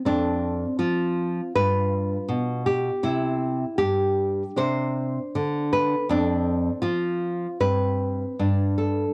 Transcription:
0.05 0.64 F2 medium
0.05 1.51 C4 medium
0.05 0.76 D4 medium
0.79 1.40 F3 medium
0.79 1.52 F4 medium
1.55 2.16 G2 medium
1.55 3.01 F4 soft
1.55 2.64 B4 loud
2.28 2.89 B2 medium
2.66 3.03 G4 medium
3.03 3.64 C3 medium
3.03 3.76 E4 medium
3.78 4.42 G2 medium
3.78 4.54 G4 medium
4.56 5.18 C3 medium
4.56 6.03 D4 soft
4.56 5.67 C5 loud
5.35 5.94 D3 medium
5.73 6.08 B4 medium
6.09 6.69 F2 medium
6.09 7.59 C4 medium
6.09 6.81 D4 medium
6.82 7.46 F3 medium
6.82 7.58 F4 medium
7.60 8.23 G2 medium
7.60 8.35 C4 soft
7.60 8.75 B4 loud
8.39 9.04 G2 medium
8.39 9.14 D4 soft
8.78 9.14 A4 medium

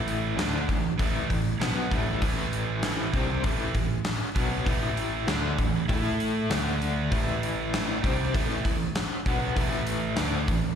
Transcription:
0.00 0.34 A1 medium
0.00 0.37 A2 medium
0.00 0.37 E3 medium
0.00 0.37 A3 medium
0.08 open hi-hat medium
0.37 0.66 D2 medium
0.37 0.67 D3 loud
0.37 0.67 A3 medium
0.37 0.68 D4 loud
0.37 snare loud
0.37 open hi-hat medium
0.68 0.97 A1 medium
0.68 0.93 A2 medium
0.68 0.93 E3 medium
0.68 kick medium
0.68 open hi-hat soft
0.99 1.28 A1 medium
0.99 1.29 A2 medium
0.99 1.29 E3 medium
0.99 1.29 A3 medium
0.99 kick loud
0.99 open hi-hat medium
1.30 1.59 A1 medium
1.30 1.54 A2 medium
1.30 1.55 E3 medium
1.30 kick medium
1.30 open hi-hat medium
1.60 1.89 B1 medium
1.60 1.90 B2 medium
1.60 1.90 F#3 medium
1.60 1.91 B3 loud
1.60 snare loud
1.60 open hi-hat medium
1.91 2.20 A1 medium
1.91 2.20 A2 medium
1.91 2.21 E3 medium
1.91 2.21 A3 loud
1.91 kick loud
1.91 open hi-hat soft
2.21 3.10 A1 medium
2.21 3.12 A2 medium
2.21 3.13 E3 medium
2.21 3.13 A3 medium
2.21 kick loud
2.21 open hi-hat medium
2.53 open hi-hat medium
2.83 snare loud
2.83 open hi-hat medium
3.13 3.42 C2 medium
3.13 3.43 C3 medium
3.13 3.43 G3 medium
3.13 3.44 C4 loud
3.13 kick medium
3.13 open hi-hat medium
3.43 3.73 A1 medium
3.43 3.74 A2 medium
3.43 3.74 E3 loud
3.43 3.74 A3 loud
3.43 kick loud
3.43 open hi-hat medium
3.75 4.03 A1 medium
3.75 4.00 A2 medium
3.75 4.00 E3 medium
3.75 kick medium
3.75 open hi-hat medium
4.05 snare loud
4.05 open hi-hat medium
4.36 4.64 B1 medium
4.36 4.66 B2 medium
4.36 4.66 F#3 medium
4.36 4.66 B3 medium
4.36 kick loud
4.36 open hi-hat medium
4.66 5.24 A1 loud
4.66 5.27 A2 medium
4.66 5.27 E3 medium
4.66 5.27 A3 medium
4.66 kick loud
4.66 open hi-hat medium
4.97 open hi-hat medium
5.27 5.56 D2 medium
5.27 5.57 D3 medium
5.27 5.58 A3 loud
5.27 5.58 D4 loud
5.27 snare loud
5.27 open hi-hat medium
5.58 5.87 A1 medium
5.58 5.83 A2 medium
5.58 5.83 E3 medium
5.58 kick medium
5.58 open hi-hat medium
5.88 6.46 A2 medium
5.88 6.49 A3 medium
5.88 6.49 E4 loud
5.88 6.49 A4 loud
5.88 kick loud
5.88 open hi-hat medium
6.20 open hi-hat soft
6.49 7.07 D2 medium
6.49 7.10 D3 medium
6.49 7.11 A3 medium
6.49 7.11 D4 medium
6.49 snare loud
6.49 open hi-hat medium
6.82 open hi-hat soft
7.11 7.99 A1 loud
7.11 8.02 A2 medium
7.11 8.02 E3 medium
7.11 8.03 A3 medium
7.11 kick loud
7.11 open hi-hat medium
7.43 open hi-hat medium
7.74 snare loud
7.74 open hi-hat medium
8.03 8.32 C2 medium
8.03 8.33 C3 medium
8.03 8.33 G3 medium
8.03 8.33 C4 loud
8.03 kick loud
8.03 open hi-hat medium
8.34 8.63 A1 medium
8.34 8.64 A2 medium
8.34 8.64 E3 loud
8.34 8.64 A3 medium
8.34 kick loud
8.34 open hi-hat medium
8.65 8.93 A1 medium
8.65 8.89 A2 medium
8.65 8.89 E3 medium
8.65 kick medium
8.65 open hi-hat medium
8.95 snare loud
8.95 open hi-hat medium
9.26 9.54 B1 medium
9.26 9.55 B2 medium
9.26 9.56 F#3 medium
9.26 9.56 B3 loud
9.26 kick loud
9.26 open hi-hat medium
9.56 10.13 A1 medium
9.56 10.16 A2 medium
9.56 10.16 E3 medium
9.56 10.16 A3 loud
9.56 kick loud
9.56 open hi-hat medium
9.87 open hi-hat medium
10.16 10.45 D2 medium
10.16 10.46 D3 medium
10.16 10.46 A3 medium
10.16 10.47 D4 loud
10.16 snare loud
10.16 open hi-hat medium
10.46 10.75 A1 medium
10.46 10.72 A2 medium
10.46 10.72 E3 medium
10.46 kick medium
10.46 open hi-hat medium

